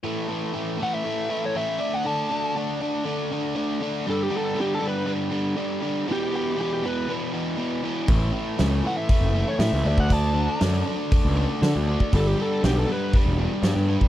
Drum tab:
HH |----------------|----------------|----------------|----------------|
SD |----------------|----------------|----------------|----------------|
BD |----------------|----------------|----------------|----------------|

HH |o---o---o---o---|o---o---o---o---|o---o---o---o---|
SD |----o-------o---|----o-------o---|----o-------o---|
BD |o-------o------o|o-------o------o|o-------o------o|